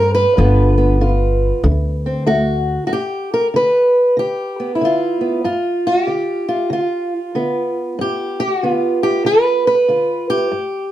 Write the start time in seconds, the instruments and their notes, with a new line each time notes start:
Already playing: upright bass G2, steel-string acoustic guitar G3 C4 A#4
0.15 steel-string acoustic guitar B4
0.37 upright bass G1, steel-string acoustic guitar G2 D3 B3 F4
0.78 steel-string acoustic guitar B3
1.01 steel-string acoustic guitar D3 F4
1.64 upright bass D2, steel-string acoustic guitar D3
2.06 steel-string acoustic guitar C4
2.26 steel-string acoustic guitar A3 F#4
2.87 steel-string acoustic guitar G2 F#4
2.93 steel-string acoustic guitar G4
3.34 steel-string acoustic guitar A#4
3.54 steel-string acoustic guitar D3 B4
4.17 steel-string acoustic guitar D3 G4
4.60 steel-string acoustic guitar B3
4.75 steel-string acoustic guitar E4
4.81 steel-string acoustic guitar D3 F4
5.21 steel-string acoustic guitar B3
5.44 steel-string acoustic guitar G2 F4
5.87 steel-string acoustic guitar F#4
6.07 steel-string acoustic guitar D3 G4
6.49 steel-string acoustic guitar F4
6.69 steel-string acoustic guitar D3 F#4
6.73 steel-string acoustic guitar F4
6.82 steel-string acoustic guitar F4
7.35 steel-string acoustic guitar D3 B3
7.99 steel-string acoustic guitar G2 G4
8.40 steel-string acoustic guitar F#4
8.63 steel-string acoustic guitar D3 B3
8.70 steel-string acoustic guitar F4
9.03 steel-string acoustic guitar G4
9.25 steel-string acoustic guitar D3 B4
9.67 steel-string acoustic guitar B4
9.88 steel-string acoustic guitar D3 F4
10.30 steel-string acoustic guitar G4
10.52 steel-string acoustic guitar G2